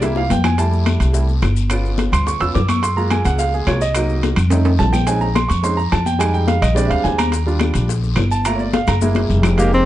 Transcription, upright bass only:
Already playing: C2
0.31 F2
1.00 C2
1.42 G1
2.12 D2
2.41 E2
2.55 F#2
3.25 C#2
3.67 C2
4.37 F2
4.79 A#1
5.50 F2
5.92 F2
6.62 A#1
6.90 D2
7.04 D#2
7.75 A#1
8.17 G1
8.88 F#1
9.30 F1

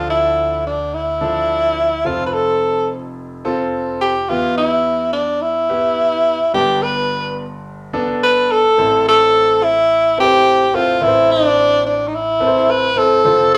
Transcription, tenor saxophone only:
0.10 E4
0.67 D4
0.94 E4
2.06 F4
2.26 B4
2.33 A4
4.01 G4
4.29 F4
4.57 E4
5.13 D4
5.41 E4
6.54 G4
6.83 B4
8.23 B4
8.52 A4
9.08 A4
9.64 E4
10.20 G4
10.75 F4
11.03 E4
11.31 D4
11.86 D4
12.07 D#4
12.15 E4
12.71 B4
12.98 A4
13.54 A4

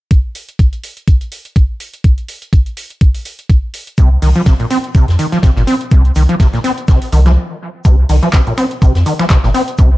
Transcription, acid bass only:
3.98 C3
4.22 D#3
4.36 F3
4.46 C3
4.60 A#2
4.71 C4
4.95 C3
5.19 D#3
5.32 F3
5.43 C3
5.57 A#2
5.67 C4
5.91 C3
6.16 D#3
6.29 F3
6.40 C3
6.53 A#2
6.64 C4
6.88 C3
7.12 D#3
7.26 F3
7.85 C3
8.09 D#3
8.23 F3
8.33 C3
8.47 A#2
8.57 C4
8.82 C3
9.06 D#3
9.19 F3
9.30 C3
9.44 A#2
9.54 C4
9.78 C3

